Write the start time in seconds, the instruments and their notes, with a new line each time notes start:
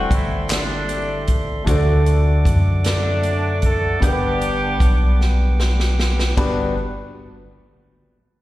Already playing: grand piano E3 G3 C4 E4 A4 C5, horn section A3 C4 F#4, tonewheel organ A4 D5 E5 C6
0.10 fm bass G1, horn section E4, kick, closed hi-hat
0.50 horn section G3 A3 D4, snare, clap, closed hi-hat
0.89 closed hi-hat
1.27 kick, closed hi-hat
1.64 fm bass D2, grand piano D3 A3 D4 F#4, kick, closed hi-hat
1.69 grand piano A4 C5, tonewheel organ D5 F#5 D6
1.77 grand piano D5
2.06 closed hi-hat
2.45 fm bass F#2, kick, closed hi-hat
2.85 horn section F#3 A3 D4, snare, closed hi-hat
3.23 closed hi-hat
3.62 horn section A4, kick, closed hi-hat
4.00 fm bass G1, grand piano G2 B3 D4 F#5, horn section B3 D4 G4, tonewheel organ G4 B4, kick, closed hi-hat
4.05 grand piano G4 A#4
4.13 grand piano B4
4.41 closed hi-hat
4.80 fm bass B1, kick, closed hi-hat
5.21 snare
5.60 snare
5.80 snare
6.00 snare
6.19 snare
6.37 fm bass G1, grand piano G2 B3 D4 F#4 G4 B4, tonewheel organ G3 B4 D5 F#5, kick, crash